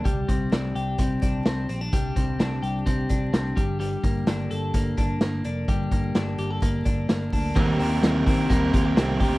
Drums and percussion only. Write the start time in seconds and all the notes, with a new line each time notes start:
0.05 kick, closed hi-hat
0.29 kick, closed hi-hat
0.52 snare, closed hi-hat
0.76 closed hi-hat
0.98 kick, closed hi-hat
1.22 kick, closed hi-hat
1.46 snare, closed hi-hat
1.69 closed hi-hat
1.93 kick, closed hi-hat
2.16 kick, closed hi-hat
2.40 snare, closed hi-hat
2.63 closed hi-hat
2.86 kick, closed hi-hat
3.09 kick, closed hi-hat
3.34 snare, closed hi-hat
3.57 kick, closed hi-hat
3.81 closed hi-hat
4.04 kick, closed hi-hat
4.27 snare, closed hi-hat
4.51 closed hi-hat
4.74 kick, closed hi-hat
4.97 kick, closed hi-hat
5.21 snare, closed hi-hat
5.44 closed hi-hat
5.68 kick, closed hi-hat
5.92 kick, closed hi-hat
6.15 snare, closed hi-hat
6.38 closed hi-hat
6.62 kick, closed hi-hat
6.85 kick, closed hi-hat
7.09 snare, closed hi-hat
7.33 kick, open hi-hat
7.56 kick, crash
7.80 hi-hat pedal, open hi-hat
8.03 snare, hi-hat pedal, open hi-hat
8.27 kick, hi-hat pedal, open hi-hat
8.50 kick, hi-hat pedal, open hi-hat
8.73 kick, hi-hat pedal, open hi-hat
8.97 snare, hi-hat pedal, open hi-hat
9.20 kick, hi-hat pedal, open hi-hat